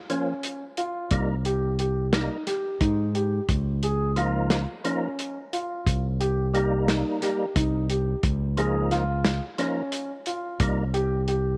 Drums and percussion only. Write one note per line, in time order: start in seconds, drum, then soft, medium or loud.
0.10 closed hi-hat medium
0.43 closed hi-hat medium
0.77 closed hi-hat medium
1.11 kick medium
1.11 closed hi-hat medium
1.45 closed hi-hat medium
1.79 closed hi-hat medium
2.13 snare loud
2.13 closed hi-hat medium
2.47 snare soft
2.47 closed hi-hat medium
2.81 kick medium
2.81 closed hi-hat medium
3.15 closed hi-hat medium
3.49 kick medium
3.49 closed hi-hat medium
3.83 closed hi-hat medium
4.16 closed hi-hat soft
4.50 snare loud
4.50 closed hi-hat medium
4.85 closed hi-hat medium
5.19 closed hi-hat medium
5.53 closed hi-hat medium
5.87 kick medium
5.87 closed hi-hat medium
6.21 closed hi-hat medium
6.55 closed hi-hat soft
6.88 snare loud
6.88 closed hi-hat medium
7.22 snare soft
7.22 closed hi-hat medium
7.56 kick loud
7.56 closed hi-hat medium
7.90 closed hi-hat medium
8.23 kick medium
8.23 closed hi-hat medium
8.57 closed hi-hat medium
8.91 snare soft
8.91 closed hi-hat soft
9.25 snare loud
9.25 closed hi-hat medium
9.58 snare soft
9.58 closed hi-hat medium
9.92 closed hi-hat medium
10.26 closed hi-hat medium
10.60 kick loud
10.60 closed hi-hat medium
10.94 closed hi-hat soft
11.28 closed hi-hat soft